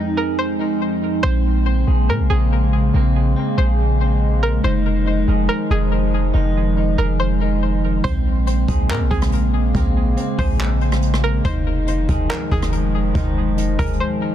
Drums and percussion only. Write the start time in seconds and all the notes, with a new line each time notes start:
8.04 kick, closed hi-hat
8.47 closed hi-hat
8.68 kick, closed hi-hat
8.90 clap, closed hi-hat
9.11 kick, closed hi-hat
9.22 cross-stick, closed hi-hat
9.32 closed hi-hat
9.75 kick, closed hi-hat
10.17 closed hi-hat
10.38 kick, open hi-hat
10.60 clap, closed hi-hat
10.81 closed hi-hat
10.92 cross-stick, closed hi-hat
11.02 closed hi-hat
11.14 cross-stick
11.45 kick, closed hi-hat
11.88 closed hi-hat
12.09 kick, closed hi-hat
12.30 clap, closed hi-hat
12.51 kick, closed hi-hat
12.62 cross-stick, closed hi-hat
12.72 closed hi-hat
13.15 kick, closed hi-hat
13.58 closed hi-hat
13.79 kick, closed hi-hat
13.86 closed hi-hat
13.93 closed hi-hat